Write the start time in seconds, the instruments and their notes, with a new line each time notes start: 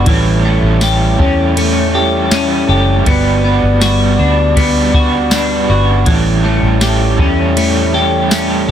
Already playing: french horn section G3, clean electric guitar B3 D4 F#4
0.05 fingered electric bass A1, overdriven electric guitar A2 E3 G3 C#4 G4, french horn section A3 E4 C#5, kick, ride
0.09 overdriven electric guitar A4
0.42 clean electric guitar A3, overdriven electric guitar G4 A4
0.46 overdriven electric guitar G3 C#4
0.62 fingered electric bass A1
0.79 overdriven electric guitar G3 C#4, snare, ride, tambourine
0.84 overdriven electric guitar G4 A4
1.17 fingered electric bass E2, overdriven electric guitar G4 A4, kick
1.21 overdriven electric guitar G3 C#4
1.54 overdriven electric guitar A2 E3 G3 C#4 G4 A4, clean electric guitar A3, ride
1.92 overdriven electric guitar G4 A4
1.97 overdriven electric guitar G3 C#4
2.30 overdriven electric guitar G3 C#4, snare, ride, tambourine
2.34 overdriven electric guitar G4 A4
2.67 fingered electric bass F#1, overdriven electric guitar G4 A4
2.71 overdriven electric guitar G3 C#4
3.04 fingered electric bass G1, overdriven electric guitar G3 D4 F#4 B4, french horn section G3 B3 F#4 D5, clean electric guitar B3, kick, ride
3.41 clean electric guitar B3, overdriven electric guitar F#4 B4
3.48 overdriven electric guitar D4
3.63 fingered electric bass G1
3.80 overdriven electric guitar G3 D4 F#4, snare, ride, tambourine
3.85 overdriven electric guitar B4
4.17 fingered electric bass D2, overdriven electric guitar F#4 B4
4.23 overdriven electric guitar D4
4.55 overdriven electric guitar G3 D4 F#4 B4, clean electric guitar B3, kick, ride
4.92 overdriven electric guitar F#4 B4, kick
4.98 overdriven electric guitar D4
5.30 overdriven electric guitar G3 D4, snare, ride, tambourine
5.34 overdriven electric guitar F#4 B4
5.67 fingered electric bass G1, overdriven electric guitar F#4 B4
5.73 overdriven electric guitar D4
6.05 fingered electric bass A1, overdriven electric guitar A2 E3 G3 C#4 G4, french horn section A3 E4 C#5, kick, ride
6.09 overdriven electric guitar A4
6.42 clean electric guitar A3, overdriven electric guitar C#4 G4 A4
6.48 overdriven electric guitar G3
6.62 fingered electric bass A1
6.79 overdriven electric guitar G3 C#4, snare, ride, tambourine
6.84 overdriven electric guitar G4 A4
7.17 fingered electric bass E2, overdriven electric guitar G4 A4, kick
7.21 overdriven electric guitar G3 C#4
7.54 overdriven electric guitar A2 E3 G3 C#4 G4, clean electric guitar A3, ride
7.59 overdriven electric guitar A4
7.93 overdriven electric guitar G4 A4
7.97 overdriven electric guitar G3 C#4
8.29 overdriven electric guitar G3 C#4, snare, ride, tambourine
8.33 overdriven electric guitar G4 A4
8.67 overdriven electric guitar A4